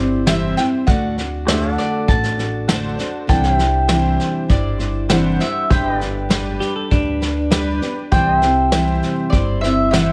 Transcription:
Already playing: G1 C4 E4 G4 C5 D5 E5
0.00 G3
0.26 C3 E3 G3 C4 E4 G4 C5 E5, snare, hi-hat pedal
0.57 G3 C4 E4 C5 G5, snare
0.87 D2 D3 A3 D4 F#4 D5 F#5, kick, snare
1.18 D4 F#4 D5, snare
1.47 D3 A3 D4 F#4 G4 A4 C5 D5 E5, snare, hi-hat pedal
1.72 A4 D5 F#5
1.78 D5, snare
2.08 A1 A3 D4 F#4 D5 A5, kick, snare
2.24 snare
2.37 D4 F#4 D5, snare
2.68 D3 A3 D4 F#4 A4 C5 D5, snare, hi-hat pedal
2.98 D4 F#4 D5, snare
3.27 C2 C3 E3 G3 D4 E4 A4 C5 D5 G5, kick, snare
3.32 F#5
3.44 snare
3.55 G4 C5 E5
3.59 G3 D4 E4, snare
3.88 C3 E3 G3 D4 E4 G4 C5 E5, snare, hi-hat pedal
4.20 snare
4.48 G1 G3 D4 E4 C5 D5, kick, snare
4.78 G3 D4 E4 C5, snare
5.09 C3 E3 G3 D4 E4 G4 C5 F#5, snare, hi-hat pedal
5.39 G3 D4 E4 C5 E5, snare
5.70 G1 G3 D4 G4 B4 C5 E5 G5, kick, snare
5.91 B4
5.98 G4 B4 D5, snare
6.02 D4
6.29 G3 D4 G4 B4 D5, snare, hi-hat pedal
6.60 G4, snare
6.76 A4
6.90 D2 G3 D4 G4 B4, kick, snare
7.21 D4 G4 B4, snare
7.50 G3 D4 G4 B4 D5, snare, hi-hat pedal
7.81 D4 G4 B4, snare
8.12 C2 C3 E3 G3 C4 E4 G4 C5 D5 G5, kick, snare
8.39 E4 C5 E5, snare
8.43 G3 C4
8.71 C3 E3 G3 C4 E4 G4 C5 E5, snare, hi-hat pedal
9.03 snare
9.30 G1 G3 C4 E4 D5, kick, snare
9.35 C5
9.61 C4 E4 C5 E5, snare
9.65 G3
9.91 C3 E3 G3 C4 E4 G4 C5 E5 F#5, snare, hi-hat pedal

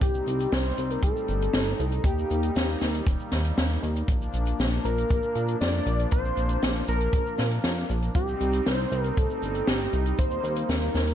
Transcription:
0.01 C2 G3 C4 D#4 G4, kick, closed hi-hat, shaker
0.14 shaker
0.27 C2, closed hi-hat, shaker
0.40 closed hi-hat, shaker
0.52 C2 C5, snare, closed hi-hat, shaker
0.65 shaker
0.78 C2, closed hi-hat, shaker
0.91 A#4, closed hi-hat, shaker
1.03 C2 A4, kick, closed hi-hat, shaker
1.17 shaker
1.28 G1, closed hi-hat, shaker
1.42 closed hi-hat, shaker
1.53 G1, snare, closed hi-hat, shaker
1.66 shaker
1.80 C2, closed hi-hat, shaker
1.91 closed hi-hat, shaker
2.04 D#2 G3 A#3 G4, kick, closed hi-hat, shaker
2.19 shaker
2.30 D#2, closed hi-hat, shaker
2.43 closed hi-hat, shaker
2.56 D#2, snare, closed hi-hat, shaker
2.68 shaker
2.81 D#2, snare, closed hi-hat, shaker
2.94 closed hi-hat, shaker
3.06 D#1, kick, closed hi-hat, shaker
3.20 shaker
3.32 D#2, snare, closed hi-hat, shaker
3.45 closed hi-hat, shaker
3.58 D#2, snare, closed hi-hat, shaker
3.70 shaker
3.83 D#2, closed hi-hat, shaker
3.96 closed hi-hat, shaker
4.08 A#1 F3 D4, kick, closed hi-hat, shaker
4.22 shaker
4.34 A#1, closed hi-hat, shaker
4.46 closed hi-hat, shaker
4.59 A#1, snare, closed hi-hat, shaker
4.72 shaker
4.84 A#1 A#4, closed hi-hat, shaker
4.97 closed hi-hat, shaker
5.10 A#1, kick, closed hi-hat, shaker
5.23 shaker
5.35 A#2, closed hi-hat, shaker
5.48 closed hi-hat, shaker
5.61 F2 D5, snare, closed hi-hat, shaker
5.73 shaker
5.86 A#1, closed hi-hat, shaker
5.98 closed hi-hat, shaker
6.11 A#1 C5, kick, closed hi-hat, shaker
6.25 shaker
6.37 A#1, closed hi-hat, shaker
6.49 closed hi-hat, shaker
6.62 A#1, snare, closed hi-hat, shaker
6.76 shaker
6.88 A#1 A#4, closed hi-hat, shaker
7.01 closed hi-hat, shaker
7.13 A#1, kick, closed hi-hat, shaker
7.27 shaker
7.38 A#2, snare, closed hi-hat, shaker
7.51 closed hi-hat, shaker
7.64 F2, snare, closed hi-hat, shaker
7.77 shaker
7.89 A#1, closed hi-hat, shaker
8.02 closed hi-hat, shaker
8.15 C2 G3 C4 D#4 G4, kick, closed hi-hat, shaker
8.28 shaker
8.41 C2, closed hi-hat, shaker
8.52 closed hi-hat, shaker
8.66 C2 C5, snare, closed hi-hat, shaker
8.78 shaker
8.92 C2, closed hi-hat, shaker
9.04 A#4, closed hi-hat, shaker
9.17 C2 A4, kick, closed hi-hat, shaker
9.30 shaker
9.42 G1, closed hi-hat, shaker
9.55 closed hi-hat, shaker
9.67 G1 G4, snare, closed hi-hat, shaker
9.80 shaker
9.93 C2, closed hi-hat, shaker
10.06 closed hi-hat, shaker
10.18 D#2 A#3 C5, kick, closed hi-hat, shaker
10.31 shaker
10.44 D#2, closed hi-hat, shaker
10.56 closed hi-hat, shaker
10.69 D#2 A#4, snare, closed hi-hat, shaker
10.82 shaker
10.95 D#2, snare, closed hi-hat, shaker
11.07 closed hi-hat, shaker

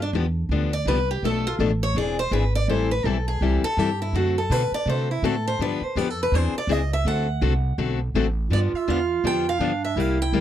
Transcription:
Already playing: G2
0.02 D4
0.13 E2 D3 F3 B3 D4 G4
0.49 D2 D3 F3 B3 D4 G4
0.73 D5
0.85 C2 D3 F3 B3 D4 G4 B4
1.11 G4
1.22 B1 B2 F3 A3 D4 A4
1.47 F4
1.59 A1 B2 F3 A3 D4 A4
1.83 C#5
1.95 E1 E3 C4 D4 G#4 D5
2.19 C5
2.31 G#1 E3 C4 D4 G#4 B4
2.55 D5
2.68 A1 E3 G3 C4 E4 A4 C5
2.91 B4
3.04 B1 E3 G3 C4 E4 A4
3.28 G#4
3.41 C2 E3 G3 C4 E4 G4 A4
3.63 A4, muted upright bass stroke
3.77 G2 E3 G3 C4 E4 G4 A4
4.02 E4
4.13 F#2 D3 A3 C4 F#4 A4
4.38 A4
4.50 B2 D3 A3 C4 F#4 A4 B4
4.72 D5, muted upright bass stroke
4.86 C3 D3 A3 C4 F#4 A4 C5
5.11 E4
5.22 A2 D3 A3 C4 F#4 A4
5.47 C5
5.59 G2 D3 F3 B3 D4 G4 B4
5.81 C5, muted upright bass stroke
5.96 F2 D3 F3 B3 D4 G4 B4
6.10 A4
6.23 B4
6.32 E2 E3 C4 D4 G#4 C5
6.54 muted upright bass stroke
6.58 D5
6.67 C#2 E3 C4 D4 G#4 D#5
6.93 E5
7.05 D2 D3 A3 C4 F#4 A4 F#5
7.41 C2 D3 A3 C4 F#4 A4
7.78 B1 D3 A3 C4 F#4 A4
8.14 A1 D3 A3 C4 F#4 A4
8.50 G2 D3 F3 B3 D4 F4 G4 D5
8.73 E5, muted upright bass stroke
8.88 E2 D3 F3 B3 D4 G4 F5
9.23 F2 D3 F3 B3 D4 G4 G5
9.49 F5
9.59 G2 D3 F3 B3 D4 G4
9.84 E5
9.96 C2 C3 G3 A#3 E4 G4 F5
10.22 G5
10.32 D2 C3 G3 A#3 E4 G4

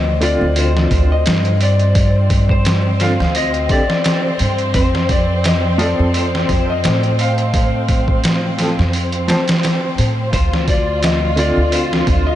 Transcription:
Already playing: D2 C4 C5 D#5
0.21 D3 C4 F4 D5, open hi-hat
0.41 D2
0.56 C5, open hi-hat
0.77 snare
0.91 D2, kick, open hi-hat
1.12 D#5
1.26 G2, snare, open hi-hat
1.45 closed hi-hat
1.61 D5, open hi-hat
1.79 closed hi-hat
1.95 kick, open hi-hat
2.30 kick, open hi-hat
2.49 C5, kick
2.65 snare, open hi-hat
3.00 D3 C4 F4 F5, snare, open hi-hat
3.20 D2, snare
3.35 D#5, open hi-hat
3.54 closed hi-hat
3.69 D3 C4 G4 D5, kick, open hi-hat
3.90 snare
4.04 snare, open hi-hat
4.39 G2, open hi-hat
4.58 closed hi-hat
4.74 F2 C5, kick, open hi-hat
4.95 snare
5.09 D5, kick, open hi-hat
5.44 D#5, snare, open hi-hat
5.78 F3 C4 A4 D5, open hi-hat
5.99 F2
6.14 C5, open hi-hat
6.35 snare
6.49 F2, kick, open hi-hat
6.70 D#5
6.84 A2, snare, open hi-hat
7.03 closed hi-hat
7.19 F5, open hi-hat
7.38 closed hi-hat
7.54 kick, open hi-hat
7.88 kick, open hi-hat
8.08 kick
8.24 snare, open hi-hat
8.58 F3 C4 A4, snare, open hi-hat
8.79 F2, snare
8.93 open hi-hat
9.12 closed hi-hat
9.28 F3 C4 C5, snare, open hi-hat
9.48 snare, open hi-hat
9.63 snare, open hi-hat
9.98 A2, open hi-hat
10.32 D2 F4 C5, kick, open hi-hat
10.53 snare
10.68 D5, kick, open hi-hat
11.03 D#5, snare, open hi-hat
11.36 D3 C4 F4 D5, open hi-hat
11.57 D2
11.72 C5, open hi-hat
11.93 snare
12.07 D2, kick, open hi-hat
12.27 D#5

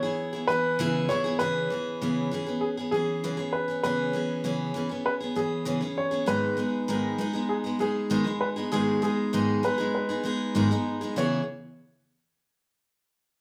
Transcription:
Already playing: C#5
0.03 B3 E4 G#4
0.33 B3 E4 G#4
0.47 E3 B3 E4 B4
0.52 G#4
0.79 C#3 E3 B3 E4 G#4
1.09 E3 B3 E4 G#4 C#5
1.24 B3 E4 G#4
1.39 C#3 E3 B3 C#4 G#4 B4
1.70 E3 B3 C#4 G#4
2.01 C#3 E3 B3 C#4 G#4
2.31 E3 B3 C#4 G#4
2.46 B3 C#4 G#4
2.61 G#4
2.77 B3 C#4 G#4
2.91 E3 B3 C#4 G#4
2.96 G#4
3.24 C#3 E3 B3 C#4 G#4
3.37 B3 C#4 G#4
3.53 B4
3.68 B3 C#4 G#4
3.83 C#3 E3 B3 C#4 G#4 B4
4.13 E3 B3 C#4 G#4
4.44 C#3 E3 B3 C#4 G#4
4.74 E3 B3 C#4 G#4
4.89 B3 C#4 G#4
5.06 B4
5.20 B3 C#4 G#4
5.36 E3 B3 C#4 G#4
5.65 C#3 E3 B3 C#4 G#4
5.81 B3 C#4 G#4
5.98 C#5
6.11 B3 C#4 G#4
6.26 G#2 D#3 G#3 B3 D#4 G#4 B4
6.57 G#3 B3 D#4 G#4
6.88 G#2 D#3 G#3 B3 D#4 G#4
7.18 G#3 B3 D#4 G#4
7.33 G#3 B3 D#4 G#4
7.49 G#4
7.64 G#3 B3 D#4 G#4
7.79 G#3 B3 D#4 G#4
8.10 G#2 D#3 G#3 B3 D#4 G#4
8.24 G#3 B3 D#4 G#4
8.41 B4
8.56 G#3 B3 D#4 G#4
8.72 G#2 D#3 G#3 B3 D#4 G#4
9.02 G#3 B3 D#4 G#4
9.33 G#2 D#3 G#3 B3 D#4 G#4
9.63 G#3 B3 D#4 G#4 B4
9.78 G#3 B3 D#4 G#4
9.95 B4
10.09 G#3 B3 D#4 G#4
10.23 G#3 B3 D#4 G#4
10.55 G#2 D#3 G#3 B3 D#4 G#4
10.71 G#3 B3 D#4 G#4
11.01 G#3 B3 D#4 G#4
11.16 C#3 E3 B3 E4 G#4 C#5

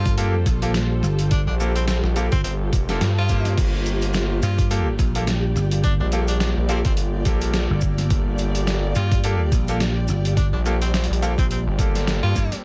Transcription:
Already playing: G2 G3 A#3 F4 G4 A4 C5
0.05 kick, closed hi-hat, maracas
0.18 A#3 F4 G4 A4, closed hi-hat, maracas
0.46 A#1, kick, closed hi-hat, maracas
0.62 A#3 F4 G4 A4, closed hi-hat, maracas
0.74 snare, closed hi-hat, maracas
1.03 G1, snare, maracas
1.19 closed hi-hat, maracas
1.31 D4, kick, closed hi-hat, maracas
1.47 A#1 D4
1.60 A#3 F4 G4 A4, maracas
1.76 C4, closed hi-hat, maracas
1.88 C4, snare, closed hi-hat, maracas
2.03 A#1, snare
2.16 A#3 F4 G4 A4, closed hi-hat, maracas
2.32 G1 C4, kick, closed hi-hat, maracas
2.44 G1 C4, closed hi-hat, maracas
2.73 F1, kick, closed hi-hat, maracas
2.89 A#3 F4 G4 A4, snare, closed hi-hat, maracas
3.01 G2, snare, closed hi-hat, maracas
3.18 F4
3.29 A#3 F4 G4 C5, kick, closed hi-hat, maracas
3.45 snare, closed hi-hat, maracas
3.57 G1 A#3 G4, kick, closed hi-hat, crash, maracas
3.86 closed hi-hat, maracas
4.02 closed hi-hat, maracas
4.13 snare, closed hi-hat, maracas
4.42 G2 F4 D5, closed hi-hat, maracas
4.58 kick, closed hi-hat, maracas
4.71 A#3 F4 G4 A4, closed hi-hat, maracas
4.99 A#1, kick, closed hi-hat, maracas
5.15 A#3 F4 G4 A4, closed hi-hat, maracas
5.27 snare, closed hi-hat, maracas
5.56 G1, snare, maracas
5.71 closed hi-hat, maracas
5.84 D4, kick, closed hi-hat, maracas
6.00 A#1 D4
6.12 A#3 F4 G4 A4, closed hi-hat, maracas
6.28 D4, closed hi-hat, maracas
6.40 D4, snare, closed hi-hat, maracas
6.57 A#1
6.69 A#3 C4 F4 G4 A4, closed hi-hat, maracas
6.85 G1 C4, kick, closed hi-hat, maracas
6.97 closed hi-hat, maracas
7.25 A#1 A#3 F4 G4 A4, kick, closed hi-hat, maracas
7.41 closed hi-hat, maracas
7.54 snare, closed hi-hat, maracas
7.70 G1
7.81 kick, maracas
7.98 snare, closed hi-hat, maracas
8.10 G1, kick, closed hi-hat, maracas
8.38 closed hi-hat, maracas
8.55 closed hi-hat, maracas
8.67 snare, closed hi-hat, maracas
8.95 G2 F4, closed hi-hat, maracas
9.12 kick, closed hi-hat, maracas
9.24 A#3 F4 G4 A4, closed hi-hat, maracas
9.52 A#1, kick, closed hi-hat, maracas
9.68 A#3 F4 G4 A4, closed hi-hat, maracas
9.80 snare, closed hi-hat, maracas
10.08 G1, snare, maracas
10.25 closed hi-hat, maracas
10.37 D4, kick, closed hi-hat, maracas
10.53 A#1 D4
10.66 A#3 F4 G4 A4, closed hi-hat, maracas
10.81 C4, closed hi-hat, maracas
10.94 C4, snare, closed hi-hat, maracas
11.04 closed hi-hat
11.10 A#1, closed hi-hat
11.22 A#3 F4 G4 A4, closed hi-hat, maracas
11.38 A#1 C4, kick, closed hi-hat, maracas
11.51 C4, closed hi-hat, maracas
11.67 G1
11.79 A#3 F4 G4 A4, kick, closed hi-hat, maracas
11.95 snare, closed hi-hat, maracas
12.07 snare, closed hi-hat, maracas
12.23 G2 F4
12.35 G2, kick, closed hi-hat, maracas
12.52 snare, closed hi-hat, maracas

